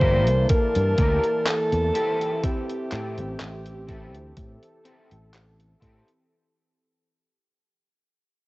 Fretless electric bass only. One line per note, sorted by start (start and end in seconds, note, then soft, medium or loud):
0.00 0.28 G1 medium
0.28 0.45 C2 medium
0.76 0.93 G2 loud
0.98 1.18 D2 medium
1.73 1.90 E2 medium
2.92 3.20 A2 medium
3.18 3.35 A1 medium
3.41 4.15 A1 medium
4.15 4.32 D2 medium
4.37 4.57 A2 medium
5.12 5.74 A1 medium
5.82 6.02 A2 medium